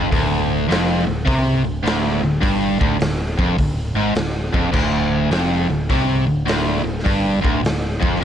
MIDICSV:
0, 0, Header, 1, 4, 480
1, 0, Start_track
1, 0, Tempo, 578035
1, 100, Time_signature, 4, 2, 24, 8
1, 6842, End_track
2, 0, Start_track
2, 0, Title_t, "Overdriven electric guitar"
2, 0, Program_c, 0, 29
2, 0, Note_on_c, 0, 41, 110
2, 92, Note_off_c, 0, 41, 0
2, 95, Note_on_c, 0, 38, 102
2, 564, Note_off_c, 0, 38, 0
2, 567, Note_on_c, 0, 41, 104
2, 879, Note_off_c, 0, 41, 0
2, 888, Note_on_c, 0, 38, 68
2, 1021, Note_off_c, 0, 38, 0
2, 1040, Note_on_c, 0, 48, 98
2, 1355, Note_off_c, 0, 48, 0
2, 1366, Note_on_c, 0, 38, 74
2, 1500, Note_off_c, 0, 38, 0
2, 1523, Note_on_c, 0, 38, 105
2, 1836, Note_off_c, 0, 38, 0
2, 1855, Note_on_c, 0, 38, 76
2, 1984, Note_off_c, 0, 38, 0
2, 2001, Note_on_c, 0, 43, 96
2, 2315, Note_off_c, 0, 43, 0
2, 2323, Note_on_c, 0, 38, 100
2, 2477, Note_off_c, 0, 38, 0
2, 2487, Note_on_c, 0, 38, 72
2, 2744, Note_off_c, 0, 38, 0
2, 2812, Note_on_c, 0, 41, 99
2, 2970, Note_off_c, 0, 41, 0
2, 2976, Note_on_c, 0, 38, 67
2, 3229, Note_off_c, 0, 38, 0
2, 3289, Note_on_c, 0, 44, 98
2, 3448, Note_off_c, 0, 44, 0
2, 3455, Note_on_c, 0, 38, 74
2, 3708, Note_off_c, 0, 38, 0
2, 3765, Note_on_c, 0, 41, 105
2, 3914, Note_off_c, 0, 41, 0
2, 3917, Note_on_c, 0, 38, 106
2, 4401, Note_off_c, 0, 38, 0
2, 4413, Note_on_c, 0, 41, 104
2, 4721, Note_off_c, 0, 41, 0
2, 4729, Note_on_c, 0, 38, 68
2, 4862, Note_off_c, 0, 38, 0
2, 4898, Note_on_c, 0, 48, 97
2, 5201, Note_off_c, 0, 48, 0
2, 5205, Note_on_c, 0, 38, 73
2, 5340, Note_off_c, 0, 38, 0
2, 5363, Note_on_c, 0, 38, 112
2, 5668, Note_off_c, 0, 38, 0
2, 5678, Note_on_c, 0, 38, 73
2, 5817, Note_off_c, 0, 38, 0
2, 5850, Note_on_c, 0, 43, 98
2, 6154, Note_off_c, 0, 43, 0
2, 6158, Note_on_c, 0, 38, 93
2, 6325, Note_off_c, 0, 38, 0
2, 6338, Note_on_c, 0, 38, 69
2, 6592, Note_off_c, 0, 38, 0
2, 6649, Note_on_c, 0, 41, 93
2, 6804, Note_off_c, 0, 41, 0
2, 6814, Note_on_c, 0, 41, 100
2, 6842, Note_off_c, 0, 41, 0
2, 6842, End_track
3, 0, Start_track
3, 0, Title_t, "Picked electric bass"
3, 0, Program_c, 1, 34
3, 0, Note_on_c, 1, 29, 91
3, 92, Note_off_c, 1, 29, 0
3, 109, Note_on_c, 1, 26, 93
3, 550, Note_off_c, 1, 26, 0
3, 574, Note_on_c, 1, 29, 92
3, 870, Note_off_c, 1, 29, 0
3, 894, Note_on_c, 1, 26, 76
3, 1045, Note_off_c, 1, 26, 0
3, 1054, Note_on_c, 1, 36, 90
3, 1349, Note_off_c, 1, 36, 0
3, 1363, Note_on_c, 1, 26, 75
3, 1520, Note_off_c, 1, 26, 0
3, 1527, Note_on_c, 1, 26, 88
3, 1825, Note_off_c, 1, 26, 0
3, 1843, Note_on_c, 1, 26, 72
3, 1999, Note_off_c, 1, 26, 0
3, 2018, Note_on_c, 1, 31, 87
3, 2311, Note_off_c, 1, 31, 0
3, 2333, Note_on_c, 1, 26, 89
3, 2484, Note_off_c, 1, 26, 0
3, 2493, Note_on_c, 1, 26, 83
3, 2788, Note_off_c, 1, 26, 0
3, 2811, Note_on_c, 1, 29, 84
3, 2963, Note_off_c, 1, 29, 0
3, 2978, Note_on_c, 1, 26, 78
3, 3271, Note_off_c, 1, 26, 0
3, 3277, Note_on_c, 1, 32, 89
3, 3436, Note_off_c, 1, 32, 0
3, 3442, Note_on_c, 1, 26, 78
3, 3743, Note_off_c, 1, 26, 0
3, 3767, Note_on_c, 1, 29, 79
3, 3921, Note_off_c, 1, 29, 0
3, 3940, Note_on_c, 1, 26, 97
3, 4385, Note_off_c, 1, 26, 0
3, 4401, Note_on_c, 1, 29, 92
3, 4702, Note_off_c, 1, 29, 0
3, 4721, Note_on_c, 1, 26, 76
3, 4878, Note_off_c, 1, 26, 0
3, 4900, Note_on_c, 1, 36, 99
3, 5193, Note_off_c, 1, 36, 0
3, 5207, Note_on_c, 1, 26, 77
3, 5352, Note_off_c, 1, 26, 0
3, 5357, Note_on_c, 1, 26, 86
3, 5661, Note_off_c, 1, 26, 0
3, 5678, Note_on_c, 1, 26, 74
3, 5837, Note_off_c, 1, 26, 0
3, 5863, Note_on_c, 1, 31, 94
3, 6155, Note_off_c, 1, 31, 0
3, 6183, Note_on_c, 1, 26, 89
3, 6328, Note_off_c, 1, 26, 0
3, 6333, Note_on_c, 1, 26, 74
3, 6631, Note_off_c, 1, 26, 0
3, 6667, Note_on_c, 1, 29, 91
3, 6814, Note_off_c, 1, 29, 0
3, 6842, End_track
4, 0, Start_track
4, 0, Title_t, "Drums"
4, 103, Note_on_c, 9, 36, 109
4, 110, Note_on_c, 9, 46, 57
4, 186, Note_off_c, 9, 36, 0
4, 193, Note_off_c, 9, 46, 0
4, 587, Note_on_c, 9, 46, 61
4, 600, Note_on_c, 9, 38, 110
4, 670, Note_off_c, 9, 46, 0
4, 683, Note_off_c, 9, 38, 0
4, 1058, Note_on_c, 9, 36, 101
4, 1061, Note_on_c, 9, 46, 59
4, 1141, Note_off_c, 9, 36, 0
4, 1144, Note_off_c, 9, 46, 0
4, 1545, Note_on_c, 9, 46, 67
4, 1558, Note_on_c, 9, 38, 125
4, 1628, Note_off_c, 9, 46, 0
4, 1641, Note_off_c, 9, 38, 0
4, 2019, Note_on_c, 9, 36, 107
4, 2022, Note_on_c, 9, 46, 66
4, 2102, Note_off_c, 9, 36, 0
4, 2105, Note_off_c, 9, 46, 0
4, 2334, Note_on_c, 9, 36, 97
4, 2417, Note_off_c, 9, 36, 0
4, 2493, Note_on_c, 9, 46, 66
4, 2506, Note_on_c, 9, 38, 116
4, 2576, Note_off_c, 9, 46, 0
4, 2590, Note_off_c, 9, 38, 0
4, 2814, Note_on_c, 9, 36, 108
4, 2897, Note_off_c, 9, 36, 0
4, 2976, Note_on_c, 9, 46, 55
4, 2977, Note_on_c, 9, 36, 89
4, 3059, Note_off_c, 9, 46, 0
4, 3060, Note_off_c, 9, 36, 0
4, 3446, Note_on_c, 9, 46, 60
4, 3460, Note_on_c, 9, 38, 119
4, 3530, Note_off_c, 9, 46, 0
4, 3543, Note_off_c, 9, 38, 0
4, 3771, Note_on_c, 9, 36, 99
4, 3854, Note_off_c, 9, 36, 0
4, 3931, Note_on_c, 9, 49, 94
4, 3935, Note_on_c, 9, 36, 109
4, 4014, Note_off_c, 9, 49, 0
4, 4018, Note_off_c, 9, 36, 0
4, 4411, Note_on_c, 9, 46, 57
4, 4424, Note_on_c, 9, 38, 109
4, 4494, Note_off_c, 9, 46, 0
4, 4507, Note_off_c, 9, 38, 0
4, 4897, Note_on_c, 9, 36, 95
4, 4900, Note_on_c, 9, 46, 52
4, 4980, Note_off_c, 9, 36, 0
4, 4983, Note_off_c, 9, 46, 0
4, 5380, Note_on_c, 9, 46, 66
4, 5393, Note_on_c, 9, 38, 123
4, 5463, Note_off_c, 9, 46, 0
4, 5476, Note_off_c, 9, 38, 0
4, 5806, Note_on_c, 9, 38, 31
4, 5864, Note_on_c, 9, 36, 99
4, 5870, Note_on_c, 9, 46, 59
4, 5889, Note_off_c, 9, 38, 0
4, 5947, Note_off_c, 9, 36, 0
4, 5953, Note_off_c, 9, 46, 0
4, 6183, Note_on_c, 9, 36, 101
4, 6266, Note_off_c, 9, 36, 0
4, 6348, Note_on_c, 9, 46, 68
4, 6362, Note_on_c, 9, 38, 113
4, 6432, Note_off_c, 9, 46, 0
4, 6445, Note_off_c, 9, 38, 0
4, 6664, Note_on_c, 9, 36, 111
4, 6747, Note_off_c, 9, 36, 0
4, 6770, Note_on_c, 9, 38, 31
4, 6842, Note_off_c, 9, 38, 0
4, 6842, End_track
0, 0, End_of_file